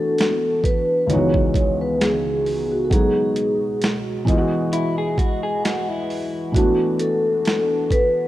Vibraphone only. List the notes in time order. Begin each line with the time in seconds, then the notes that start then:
Already playing: A4
0.64 B4
1.10 C#5
1.81 B4
2.01 G#4
2.72 F#4
2.84 A4
2.91 G#4
6.55 F#4
7.01 A4
7.92 B4